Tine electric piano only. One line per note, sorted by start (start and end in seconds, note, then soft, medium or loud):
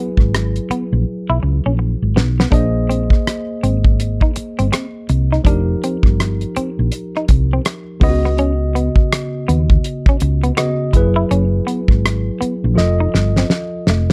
0.00 2.11 F#3 medium
0.00 2.11 E4 medium
0.00 2.12 G#4 medium
0.00 2.13 B4 medium
2.50 5.40 A#3 medium
2.50 5.40 G#4 medium
2.50 5.41 C5 medium
2.50 5.42 D#5 medium
5.44 7.96 F3 medium
5.44 7.97 D#4 medium
5.44 7.98 G4 medium
5.44 7.98 A#4 medium
8.00 10.52 C#3 medium
8.00 10.53 B3 medium
8.00 8.10 F4 medium
8.00 10.54 D#5 medium
8.09 10.57 F#4 medium
10.57 10.93 C#3 medium
10.57 10.94 B3 soft
10.57 10.94 F#4 soft
10.57 10.94 D#5 medium
10.93 12.72 F#3 medium
10.93 12.73 E4 medium
10.93 12.74 G#4 medium
10.97 12.74 B4 medium
12.74 14.13 F3 medium
12.74 14.13 F4 medium
12.74 14.13 A4 medium
12.74 14.13 D#5 medium